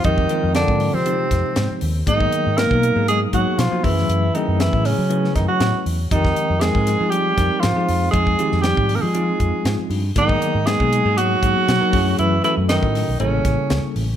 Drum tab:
HH |x-x-x-o-x-x-x-o-|x-x-x-x-x-x-x-o-|x-x-x-o-x-x-x-o-|x-x-x-x-x-x-x-o-|
SD |----o-----o-o---|----o-------o--o|----o-o--oo-o---|-o--o-o---o-o---|
BD |oo---o----o-----|oo---o----o---o-|-----o----o-----|oo---o----o-----|

HH |x-x-x-o-x-x-x-o-|x-x-x-x-x-x-x-o-|x-x-x-o-x-x-x-o-|
SD |---oo-------o---|----o-------o---|----o-o---o-o---|
BD |oo---o----o-----|oo---o----o---o-|-----o----o-----|